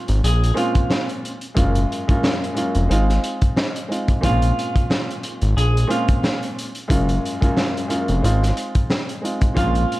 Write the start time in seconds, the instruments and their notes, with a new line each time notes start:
Already playing: grand piano A#2 G#3 C4 C#4 F4, clean electric guitar F4
0.08 analog synth bass G#1, closed hi-hat
0.24 analog synth bass A#1, clean electric guitar G#4, closed hi-hat
0.44 closed hi-hat
0.54 grand piano A#2 G#3 C4 C#4 F4, clean electric guitar F4, closed hi-hat
0.75 kick, closed hi-hat
0.90 snare
1.09 closed hi-hat
1.25 closed hi-hat
1.41 closed hi-hat
1.55 analog synth bass F#1, grand piano F#2 G#3 A#3 C#4 F4, kick, closed hi-hat
1.75 closed hi-hat
1.92 closed hi-hat
2.08 grand piano F#2 G#3 A#3 C#4 F4, kick, closed hi-hat
2.23 snare
2.44 closed hi-hat
2.55 grand piano F#2 G#3 A#3 C#4 F4, closed hi-hat
2.75 analog synth bass F1, closed hi-hat
2.89 analog synth bass G#1, grand piano G#3 C4 D#4 F4, closed hi-hat
3.09 snare, closed hi-hat
3.24 closed hi-hat
3.42 kick, closed hi-hat
3.57 snare
3.76 closed hi-hat
3.88 grand piano G#3 C4 D#4 F4, closed hi-hat
4.08 kick, closed hi-hat
4.21 analog synth bass A#1, grand piano A#2 G#3 C4 C#4 F4, clean electric guitar F4, kick, closed hi-hat
4.42 closed hi-hat
4.59 closed hi-hat
4.76 kick, closed hi-hat
4.90 snare
5.11 closed hi-hat
5.23 closed hi-hat
5.42 analog synth bass G#1, closed hi-hat
5.57 analog synth bass A#1, clean electric guitar G#4, closed hi-hat
5.77 closed hi-hat
5.87 grand piano A#2 G#3 C4 C#4 F4, clean electric guitar F4, closed hi-hat
6.08 kick, closed hi-hat
6.23 snare
6.43 closed hi-hat
6.59 closed hi-hat
6.75 closed hi-hat
6.88 analog synth bass F#1, grand piano F#2 G#3 A#3 C#4 F4, kick, closed hi-hat
7.09 closed hi-hat
7.26 closed hi-hat
7.41 grand piano F#2 G#3 A#3 C#4 F4, kick, closed hi-hat
7.57 snare
7.77 closed hi-hat
7.88 grand piano F#2 G#3 A#3 C#4 F4, closed hi-hat
8.08 analog synth bass F1, closed hi-hat
8.22 analog synth bass G#1, grand piano G#3 C4 D#4 F4, closed hi-hat
8.43 snare, closed hi-hat
8.57 closed hi-hat
8.75 kick, closed hi-hat
8.90 snare
9.09 closed hi-hat
9.22 grand piano G#3 C4 D#4 F4, closed hi-hat
9.41 kick, closed hi-hat
9.54 analog synth bass A#1, grand piano A#2 G#3 C4 C#4 F4, clean electric guitar F4, kick, closed hi-hat
9.75 closed hi-hat
9.92 closed hi-hat